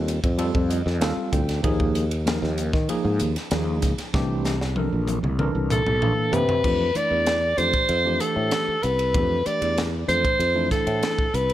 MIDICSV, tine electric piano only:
0, 0, Header, 1, 2, 480
1, 0, Start_track
1, 0, Tempo, 625652
1, 1256, Time_signature, 4, 2, 24, 8
1, 8848, End_track
2, 0, Start_track
2, 0, Title_t, "Tine electric piano"
2, 0, Program_c, 0, 4
2, 0, Note_on_c, 0, 55, 69
2, 0, Note_on_c, 0, 60, 65
2, 0, Note_on_c, 0, 65, 67
2, 0, Note_on_c, 0, 69, 82
2, 121, Note_off_c, 0, 55, 0
2, 123, Note_off_c, 0, 60, 0
2, 124, Note_off_c, 0, 65, 0
2, 125, Note_off_c, 0, 69, 0
2, 291, Note_on_c, 0, 55, 98
2, 295, Note_on_c, 0, 60, 85
2, 296, Note_on_c, 0, 65, 86
2, 299, Note_on_c, 0, 69, 102
2, 536, Note_on_c, 0, 75, 65
2, 602, Note_off_c, 0, 55, 0
2, 604, Note_off_c, 0, 60, 0
2, 605, Note_off_c, 0, 65, 0
2, 606, Note_off_c, 0, 69, 0
2, 759, Note_off_c, 0, 75, 0
2, 770, Note_on_c, 0, 55, 83
2, 773, Note_on_c, 0, 60, 71
2, 774, Note_on_c, 0, 65, 79
2, 774, Note_on_c, 0, 77, 67
2, 778, Note_on_c, 0, 69, 97
2, 998, Note_off_c, 0, 77, 0
2, 1014, Note_on_c, 0, 79, 64
2, 1081, Note_off_c, 0, 55, 0
2, 1083, Note_off_c, 0, 60, 0
2, 1083, Note_off_c, 0, 65, 0
2, 1085, Note_off_c, 0, 69, 0
2, 1238, Note_off_c, 0, 79, 0
2, 1248, Note_on_c, 0, 53, 91
2, 1253, Note_on_c, 0, 58, 78
2, 1256, Note_on_c, 0, 63, 85
2, 1260, Note_on_c, 0, 68, 100
2, 1560, Note_off_c, 0, 53, 0
2, 1562, Note_off_c, 0, 58, 0
2, 1564, Note_off_c, 0, 63, 0
2, 1566, Note_off_c, 0, 68, 0
2, 1732, Note_on_c, 0, 53, 77
2, 1733, Note_on_c, 0, 58, 71
2, 1738, Note_on_c, 0, 63, 68
2, 1740, Note_on_c, 0, 70, 78
2, 2041, Note_off_c, 0, 53, 0
2, 2042, Note_off_c, 0, 58, 0
2, 2045, Note_off_c, 0, 63, 0
2, 2045, Note_off_c, 0, 70, 0
2, 2216, Note_on_c, 0, 53, 90
2, 2217, Note_on_c, 0, 58, 86
2, 2222, Note_on_c, 0, 63, 81
2, 2222, Note_on_c, 0, 68, 100
2, 2523, Note_off_c, 0, 53, 0
2, 2524, Note_off_c, 0, 58, 0
2, 2526, Note_off_c, 0, 63, 0
2, 2526, Note_off_c, 0, 68, 0
2, 2697, Note_on_c, 0, 53, 85
2, 2698, Note_on_c, 0, 58, 77
2, 2702, Note_on_c, 0, 63, 76
2, 2706, Note_on_c, 0, 68, 86
2, 3004, Note_off_c, 0, 53, 0
2, 3004, Note_off_c, 0, 58, 0
2, 3006, Note_off_c, 0, 63, 0
2, 3008, Note_off_c, 0, 68, 0
2, 3173, Note_on_c, 0, 52, 89
2, 3177, Note_on_c, 0, 57, 76
2, 3180, Note_on_c, 0, 62, 84
2, 3181, Note_on_c, 0, 67, 98
2, 3481, Note_off_c, 0, 52, 0
2, 3483, Note_off_c, 0, 57, 0
2, 3485, Note_off_c, 0, 62, 0
2, 3485, Note_off_c, 0, 67, 0
2, 3655, Note_on_c, 0, 52, 67
2, 3657, Note_on_c, 0, 69, 70
2, 3661, Note_on_c, 0, 62, 69
2, 3664, Note_on_c, 0, 70, 81
2, 3962, Note_off_c, 0, 52, 0
2, 3963, Note_off_c, 0, 69, 0
2, 3965, Note_off_c, 0, 62, 0
2, 3967, Note_off_c, 0, 70, 0
2, 4136, Note_on_c, 0, 52, 98
2, 4136, Note_on_c, 0, 69, 80
2, 4141, Note_on_c, 0, 62, 86
2, 4143, Note_on_c, 0, 70, 101
2, 4443, Note_off_c, 0, 52, 0
2, 4443, Note_off_c, 0, 69, 0
2, 4445, Note_off_c, 0, 62, 0
2, 4446, Note_off_c, 0, 70, 0
2, 4616, Note_on_c, 0, 52, 85
2, 4618, Note_on_c, 0, 69, 70
2, 4622, Note_on_c, 0, 58, 81
2, 4622, Note_on_c, 0, 62, 73
2, 4923, Note_off_c, 0, 52, 0
2, 4924, Note_off_c, 0, 69, 0
2, 4926, Note_off_c, 0, 58, 0
2, 4926, Note_off_c, 0, 62, 0
2, 5089, Note_on_c, 0, 52, 64
2, 5092, Note_on_c, 0, 57, 55
2, 5098, Note_on_c, 0, 62, 58
2, 5098, Note_on_c, 0, 67, 66
2, 5246, Note_off_c, 0, 52, 0
2, 5247, Note_off_c, 0, 57, 0
2, 5250, Note_off_c, 0, 62, 0
2, 5250, Note_off_c, 0, 67, 0
2, 5330, Note_on_c, 0, 52, 56
2, 5335, Note_on_c, 0, 57, 52
2, 5336, Note_on_c, 0, 62, 52
2, 5336, Note_on_c, 0, 64, 63
2, 5640, Note_off_c, 0, 52, 0
2, 5642, Note_off_c, 0, 57, 0
2, 5643, Note_off_c, 0, 62, 0
2, 5643, Note_off_c, 0, 64, 0
2, 5810, Note_on_c, 0, 52, 54
2, 5814, Note_on_c, 0, 62, 49
2, 5815, Note_on_c, 0, 57, 47
2, 5817, Note_on_c, 0, 67, 59
2, 6042, Note_off_c, 0, 52, 0
2, 6044, Note_off_c, 0, 62, 0
2, 6045, Note_off_c, 0, 57, 0
2, 6046, Note_off_c, 0, 67, 0
2, 6175, Note_on_c, 0, 52, 73
2, 6177, Note_on_c, 0, 57, 66
2, 6180, Note_on_c, 0, 62, 60
2, 6184, Note_on_c, 0, 67, 75
2, 6713, Note_off_c, 0, 52, 0
2, 6714, Note_off_c, 0, 57, 0
2, 6715, Note_off_c, 0, 62, 0
2, 6717, Note_off_c, 0, 67, 0
2, 7015, Note_on_c, 0, 52, 61
2, 7018, Note_on_c, 0, 57, 53
2, 7022, Note_on_c, 0, 62, 53
2, 7023, Note_on_c, 0, 67, 68
2, 7170, Note_off_c, 0, 52, 0
2, 7172, Note_off_c, 0, 57, 0
2, 7173, Note_off_c, 0, 62, 0
2, 7174, Note_off_c, 0, 67, 0
2, 7251, Note_on_c, 0, 52, 53
2, 7255, Note_on_c, 0, 57, 52
2, 7256, Note_on_c, 0, 62, 52
2, 7259, Note_on_c, 0, 67, 64
2, 7562, Note_off_c, 0, 52, 0
2, 7564, Note_off_c, 0, 57, 0
2, 7564, Note_off_c, 0, 62, 0
2, 7566, Note_off_c, 0, 67, 0
2, 7728, Note_on_c, 0, 52, 60
2, 7733, Note_on_c, 0, 57, 57
2, 7733, Note_on_c, 0, 62, 54
2, 7738, Note_on_c, 0, 69, 60
2, 7963, Note_off_c, 0, 52, 0
2, 7965, Note_off_c, 0, 57, 0
2, 7966, Note_off_c, 0, 62, 0
2, 7968, Note_off_c, 0, 69, 0
2, 8093, Note_on_c, 0, 52, 65
2, 8096, Note_on_c, 0, 57, 64
2, 8097, Note_on_c, 0, 62, 65
2, 8099, Note_on_c, 0, 64, 70
2, 8633, Note_off_c, 0, 52, 0
2, 8635, Note_off_c, 0, 57, 0
2, 8635, Note_off_c, 0, 62, 0
2, 8637, Note_off_c, 0, 64, 0
2, 8848, End_track
0, 0, End_of_file